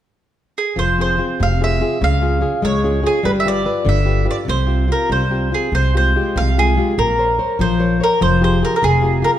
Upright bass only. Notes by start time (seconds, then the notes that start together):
0.77 F1
1.40 F1
2.02 C#2
2.63 C#2
3.25 G1
3.86 G1
4.48 C2
5.09 C2
5.72 C2
6.36 C2
6.98 A#1
7.59 A#1
8.21 F1
8.83 F1